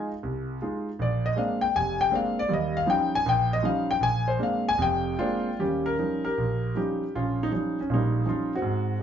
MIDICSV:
0, 0, Header, 1, 2, 480
1, 0, Start_track
1, 0, Tempo, 379747
1, 1258, Time_signature, 4, 2, 24, 8
1, 5566, Tempo, 392927
1, 8446, Tempo, 373832
1, 11353, End_track
2, 0, Start_track
2, 0, Title_t, "Grand piano"
2, 0, Program_c, 0, 0
2, 0, Note_on_c, 0, 56, 55
2, 0, Note_on_c, 0, 63, 47
2, 0, Note_on_c, 0, 65, 58
2, 146, Note_off_c, 0, 56, 0
2, 147, Note_off_c, 0, 63, 0
2, 149, Note_off_c, 0, 65, 0
2, 294, Note_on_c, 0, 36, 76
2, 716, Note_off_c, 0, 36, 0
2, 782, Note_on_c, 0, 65, 63
2, 784, Note_on_c, 0, 56, 59
2, 794, Note_on_c, 0, 63, 50
2, 1113, Note_off_c, 0, 56, 0
2, 1113, Note_off_c, 0, 65, 0
2, 1118, Note_off_c, 0, 63, 0
2, 1254, Note_on_c, 0, 34, 74
2, 1287, Note_on_c, 0, 74, 87
2, 1581, Note_off_c, 0, 74, 0
2, 1589, Note_on_c, 0, 75, 97
2, 1672, Note_off_c, 0, 34, 0
2, 1721, Note_on_c, 0, 56, 60
2, 1727, Note_on_c, 0, 62, 63
2, 1728, Note_on_c, 0, 60, 53
2, 1729, Note_on_c, 0, 58, 56
2, 1739, Note_off_c, 0, 75, 0
2, 1740, Note_on_c, 0, 77, 91
2, 2040, Note_on_c, 0, 79, 100
2, 2046, Note_off_c, 0, 77, 0
2, 2062, Note_off_c, 0, 56, 0
2, 2065, Note_off_c, 0, 60, 0
2, 2065, Note_off_c, 0, 62, 0
2, 2066, Note_off_c, 0, 58, 0
2, 2202, Note_off_c, 0, 79, 0
2, 2217, Note_on_c, 0, 29, 83
2, 2224, Note_on_c, 0, 80, 115
2, 2524, Note_off_c, 0, 80, 0
2, 2538, Note_on_c, 0, 79, 117
2, 2626, Note_off_c, 0, 29, 0
2, 2667, Note_on_c, 0, 56, 59
2, 2670, Note_on_c, 0, 58, 57
2, 2674, Note_on_c, 0, 60, 59
2, 2680, Note_on_c, 0, 62, 64
2, 2688, Note_off_c, 0, 79, 0
2, 2722, Note_on_c, 0, 77, 98
2, 3009, Note_off_c, 0, 56, 0
2, 3010, Note_off_c, 0, 58, 0
2, 3011, Note_off_c, 0, 77, 0
2, 3012, Note_off_c, 0, 60, 0
2, 3015, Note_off_c, 0, 62, 0
2, 3025, Note_on_c, 0, 74, 101
2, 3142, Note_on_c, 0, 55, 73
2, 3147, Note_on_c, 0, 39, 80
2, 3172, Note_off_c, 0, 74, 0
2, 3204, Note_on_c, 0, 75, 94
2, 3496, Note_off_c, 0, 75, 0
2, 3498, Note_on_c, 0, 77, 111
2, 3571, Note_off_c, 0, 55, 0
2, 3574, Note_off_c, 0, 39, 0
2, 3617, Note_on_c, 0, 53, 65
2, 3624, Note_on_c, 0, 61, 60
2, 3626, Note_on_c, 0, 55, 62
2, 3630, Note_on_c, 0, 63, 74
2, 3649, Note_off_c, 0, 77, 0
2, 3663, Note_on_c, 0, 79, 101
2, 3963, Note_off_c, 0, 79, 0
2, 3965, Note_off_c, 0, 53, 0
2, 3969, Note_off_c, 0, 61, 0
2, 3970, Note_off_c, 0, 55, 0
2, 3971, Note_off_c, 0, 63, 0
2, 3987, Note_on_c, 0, 80, 126
2, 4117, Note_on_c, 0, 34, 90
2, 4130, Note_off_c, 0, 80, 0
2, 4157, Note_on_c, 0, 79, 109
2, 4447, Note_off_c, 0, 79, 0
2, 4465, Note_on_c, 0, 75, 108
2, 4534, Note_off_c, 0, 34, 0
2, 4584, Note_on_c, 0, 53, 66
2, 4589, Note_on_c, 0, 55, 57
2, 4591, Note_on_c, 0, 61, 60
2, 4597, Note_on_c, 0, 63, 68
2, 4610, Note_off_c, 0, 75, 0
2, 4615, Note_on_c, 0, 77, 102
2, 4918, Note_off_c, 0, 77, 0
2, 4928, Note_off_c, 0, 53, 0
2, 4930, Note_off_c, 0, 55, 0
2, 4931, Note_off_c, 0, 61, 0
2, 4935, Note_off_c, 0, 63, 0
2, 4937, Note_on_c, 0, 79, 115
2, 5061, Note_on_c, 0, 34, 75
2, 5086, Note_off_c, 0, 79, 0
2, 5094, Note_on_c, 0, 80, 119
2, 5399, Note_off_c, 0, 80, 0
2, 5406, Note_on_c, 0, 72, 92
2, 5490, Note_off_c, 0, 34, 0
2, 5542, Note_on_c, 0, 58, 61
2, 5553, Note_on_c, 0, 56, 60
2, 5556, Note_on_c, 0, 62, 70
2, 5559, Note_on_c, 0, 60, 59
2, 5564, Note_off_c, 0, 72, 0
2, 5599, Note_on_c, 0, 77, 101
2, 5887, Note_off_c, 0, 58, 0
2, 5890, Note_off_c, 0, 77, 0
2, 5893, Note_off_c, 0, 56, 0
2, 5894, Note_off_c, 0, 62, 0
2, 5896, Note_off_c, 0, 60, 0
2, 5911, Note_on_c, 0, 80, 127
2, 6024, Note_on_c, 0, 29, 88
2, 6029, Note_on_c, 0, 41, 86
2, 6055, Note_off_c, 0, 80, 0
2, 6076, Note_on_c, 0, 79, 111
2, 6462, Note_off_c, 0, 29, 0
2, 6465, Note_off_c, 0, 41, 0
2, 6524, Note_on_c, 0, 65, 105
2, 6527, Note_on_c, 0, 56, 65
2, 6531, Note_on_c, 0, 60, 60
2, 6536, Note_on_c, 0, 58, 59
2, 6539, Note_on_c, 0, 62, 70
2, 6877, Note_off_c, 0, 56, 0
2, 6878, Note_off_c, 0, 60, 0
2, 6881, Note_off_c, 0, 58, 0
2, 6882, Note_off_c, 0, 62, 0
2, 6914, Note_off_c, 0, 79, 0
2, 7020, Note_on_c, 0, 55, 61
2, 7022, Note_on_c, 0, 39, 58
2, 7026, Note_on_c, 0, 67, 87
2, 7031, Note_on_c, 0, 61, 64
2, 7035, Note_off_c, 0, 65, 0
2, 7343, Note_on_c, 0, 70, 92
2, 7351, Note_off_c, 0, 67, 0
2, 7436, Note_off_c, 0, 55, 0
2, 7438, Note_off_c, 0, 39, 0
2, 7491, Note_off_c, 0, 61, 0
2, 7498, Note_on_c, 0, 53, 46
2, 7498, Note_on_c, 0, 55, 43
2, 7510, Note_on_c, 0, 61, 46
2, 7510, Note_on_c, 0, 63, 53
2, 7799, Note_off_c, 0, 70, 0
2, 7817, Note_on_c, 0, 70, 96
2, 7821, Note_on_c, 0, 67, 62
2, 7832, Note_off_c, 0, 53, 0
2, 7832, Note_off_c, 0, 55, 0
2, 7838, Note_off_c, 0, 61, 0
2, 7838, Note_off_c, 0, 63, 0
2, 7976, Note_on_c, 0, 34, 69
2, 8384, Note_off_c, 0, 34, 0
2, 8431, Note_on_c, 0, 53, 52
2, 8432, Note_off_c, 0, 67, 0
2, 8442, Note_on_c, 0, 55, 45
2, 8443, Note_on_c, 0, 61, 45
2, 8450, Note_on_c, 0, 67, 78
2, 8453, Note_on_c, 0, 63, 59
2, 8466, Note_off_c, 0, 70, 0
2, 8780, Note_off_c, 0, 53, 0
2, 8786, Note_off_c, 0, 55, 0
2, 8786, Note_off_c, 0, 61, 0
2, 8791, Note_off_c, 0, 63, 0
2, 8946, Note_on_c, 0, 34, 65
2, 8951, Note_off_c, 0, 67, 0
2, 8952, Note_on_c, 0, 65, 87
2, 8954, Note_on_c, 0, 61, 64
2, 9273, Note_off_c, 0, 65, 0
2, 9306, Note_on_c, 0, 63, 88
2, 9360, Note_off_c, 0, 34, 0
2, 9404, Note_off_c, 0, 61, 0
2, 9407, Note_on_c, 0, 53, 53
2, 9409, Note_off_c, 0, 63, 0
2, 9421, Note_on_c, 0, 55, 49
2, 9423, Note_on_c, 0, 61, 49
2, 9429, Note_on_c, 0, 63, 59
2, 9748, Note_off_c, 0, 53, 0
2, 9755, Note_off_c, 0, 55, 0
2, 9756, Note_off_c, 0, 61, 0
2, 9758, Note_off_c, 0, 63, 0
2, 9786, Note_on_c, 0, 61, 76
2, 9900, Note_on_c, 0, 34, 68
2, 9905, Note_on_c, 0, 46, 69
2, 9927, Note_off_c, 0, 61, 0
2, 9956, Note_on_c, 0, 63, 85
2, 9958, Note_on_c, 0, 55, 64
2, 10313, Note_off_c, 0, 34, 0
2, 10316, Note_off_c, 0, 46, 0
2, 10348, Note_off_c, 0, 55, 0
2, 10365, Note_off_c, 0, 63, 0
2, 10366, Note_on_c, 0, 61, 49
2, 10367, Note_on_c, 0, 53, 53
2, 10367, Note_on_c, 0, 55, 50
2, 10384, Note_on_c, 0, 63, 64
2, 10405, Note_on_c, 0, 65, 83
2, 10702, Note_off_c, 0, 55, 0
2, 10702, Note_off_c, 0, 61, 0
2, 10703, Note_off_c, 0, 53, 0
2, 10711, Note_off_c, 0, 63, 0
2, 10715, Note_off_c, 0, 65, 0
2, 10750, Note_on_c, 0, 66, 87
2, 10754, Note_on_c, 0, 60, 61
2, 10831, Note_on_c, 0, 44, 75
2, 11254, Note_off_c, 0, 44, 0
2, 11313, Note_on_c, 0, 54, 57
2, 11318, Note_off_c, 0, 60, 0
2, 11353, Note_off_c, 0, 54, 0
2, 11353, Note_off_c, 0, 66, 0
2, 11353, End_track
0, 0, End_of_file